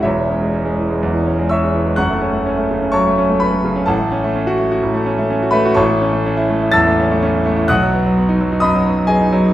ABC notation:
X:1
M:4/4
L:1/16
Q:1/4=126
K:F#dor
V:1 name="Grand piano"
[Ece]8- [Ece]2 z2 [ec'e']4 | [fc'f']8 [cac']4 [Bb]4 | [Afa]8- [Afa]2 z4 [Bb]2 | [K:Alyd] [cac']8 [ae'a']8 |
[fd'f']8 [dbd']4 [Gdg]4 |]
V:2 name="Grand piano"
[E,,,E,,] G, C G, C G, E, G, E,, E, C G, C G, E, G, | [F,,,F,,] A, C A, C A, C, C F, A, C A, C A, C, C | A,,, A, C A, C F A, F A,,, A, C A, C F A, F | [K:Alyd] A,,, A, C A, C E A, E E,, A, C A, C E A, E |
B,,, F, B, F, B, D F, D F,, F, B, F, B, D F, D |]